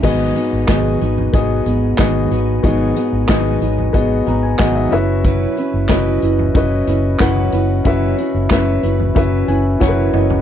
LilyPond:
<<
  \new Staff \with { instrumentName = "Grand piano" } { \time 4/4 \key gis \minor \tempo 4 = 92 << { gis,4. r2 r8 | gis,4. r4 ais''16 gis''16 fis''16 e''8. | r1 | r2 r8 gis''8 fis''8 dis''8 | } \\ { <b fis' gis' dis''>8. r16 <b fis' gis' dis''>8. r16 <b fis' gis' dis''>8. r16 <b fis' gis' dis''>8. r16 | <b fis' gis' dis''>8. r16 <b fis' gis' dis''>8. r16 <b fis' gis' dis''>8. r16 <b fis' gis' dis''>8 <cis' fis' b' e''>8~ | <cis' fis' b' e''>8 r8 <cis' fis' b' dis''>8. r16 <cis' fis' b' dis''>8. r16 <cis' fis' b' fis''>8. r16 | <cis' fis' b' e''>8. r16 <cis' fis' b' e''>8. r16 <cis' fis' b' e''>8. r16 <cis' fis' ais' b' cis''>8. r16 | } >> }
  \new Staff \with { instrumentName = "Steel-string acoustic guitar" } { \time 4/4 \key gis \minor <gis, dis fis b dis' gis'>8 <fis b dis' gis'>8 <gis, dis fis b dis' gis'>8 <fis b dis' gis'>8 <fis b dis' gis'>8 <fis b dis' gis'>8 <gis, dis fis b dis' gis'>8 <fis b dis' gis'>8 | <gis, dis fis b dis' gis'>8 <fis b dis' gis'>8 <gis, dis fis b dis' gis'>8 <fis b dis' gis'>8 <fis b dis' gis'>8 <fis b dis' gis'>8 <gis, dis fis b dis' gis'>8 <cis' e' b'>8 | <fis cis' e' b'>8 <cis' e' b'>8 <fis cis' e' b'>8 <cis' e' b'>8 <fis cis' e' b'>8 <cis' e' b'>8 <fis cis' e' b'>8 <cis' e' b'>8 | <fis cis' e' b'>8 <cis' e' b'>8 <fis cis' e' b'>8 <cis' e' b'>8 <fis cis' e' b'>8 <cis' e' b'>8 <fis cis' e' b'>8 <cis' e' b'>8 | }
  \new Staff \with { instrumentName = "Fingered electric bass" } { \clef bass \time 4/4 \key gis \minor gis,,8 r16 gis,,16 gis,,8 gis,,8 gis,,8 gis,,8 gis,,8 gis,,8 | gis,,8 r16 gis,,16 gis,,8 gis,,8 gis,,8 gis,,8 gis,,8 fis,,8~ | fis,,8 r16 fis,,16 fis,,8 fis,,8 fis,,8 fis,,8 fis,,8 fis,,8 | fis,,8 r16 fis,,16 fis,,8 fis,,8 fis,,8 fis,,8 fis,,8 fis,,8 | }
  \new DrumStaff \with { instrumentName = "Drums" } \drummode { \time 4/4 <cymc bd>8 hh8 <hc hh bd sn>8 hh16 tomfh16 <hh bd>8 <hh tomfh>8 <hc hh bd sn>8 hh8 | <hh bd>8 hh8 <hc hh bd sn>8 hh16 tomfh16 <hh bd>8 <hh tomfh>8 <hc hh bd sn>8 hh8 | <hh bd>8 hh8 <hc hh bd sn>8 hh16 tomfh16 <hh bd>8 <hh tomfh>8 <hc hh bd sn>16 tomfh16 hh8 | <hh bd>8 hh8 <hc hh bd sn>8 hh16 tomfh16 <hh bd>8 <hh tomfh>8 <bd sn>8 toml16 tomfh16 | }
>>